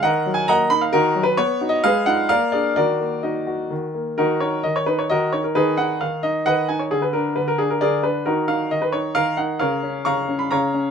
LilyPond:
<<
  \new Staff \with { instrumentName = "Grand piano" } { \time 3/4 \key ees \minor \tempo 4 = 132 << { \tuplet 3/2 { ges''4 aes''8 } bes''8 ces'''16 f''16 \tuplet 3/2 { bes'4 ces''8 } | \tuplet 3/2 { des''4 dis''8 } f''8 ges''8 f''8 d''8 | d''4 ees''4 r4 | bes'8 des''8 ees''16 des''16 ces''16 des''16 ees''8 des''16 bes'16 |
ces''8 ges''8 f''8 ees''8 ges''8 aes''16 des''16 | aes'16 ces''16 bes'8 ces''16 bes'16 aes'16 bes'16 d''8 ces''8 | bes'8 f''8 ees''16 ces''16 des''8 f''8 ges''8 | f''4 des'''8. ces'''16 bes''4 | } \\ { <bes' ees''>8 r8 <ees'' ges''>8 r8 <ees' ges'>8 r8 | r4 <aes' ces''>8 r8 <bes' d''>8 r8 | <ges' bes'>4 <ges' bes'>4 r4 | <ees' ges'>8 r4. <ges' bes'>8 r8 |
<ees' aes'>8 r4. <ces'' ees''>8 r8 | r2 <aes' bes'>8 r8 | <ees' ges'>8 r4. bes'8 r8 | <bes' des''>4 <f'' bes''>8. r16 <des'' f''>4 | } >> }
  \new Staff \with { instrumentName = "Grand piano" } { \time 3/4 \key ees \minor ees8 ges8 bes8 ees'8 ees8 ges8 | b8 <dis' fis'>8 aes8 <ees' f'>8 bes8 <d' aes'>8 | ees8 bes8 ees'8 ges'8 ees8 bes8 | ees8 ees'8 ees8 ees'8 ees8 ees'8 |
ees8 ees'8 ees8 ees'8 ees8 ees'8 | d8 d'8 d8 d'8 d8 d'8 | ees8 ees'8 ees8 ees'8 ees8 ees'8 | des8 des'8 des8 des'8 des8 des'8 | }
>>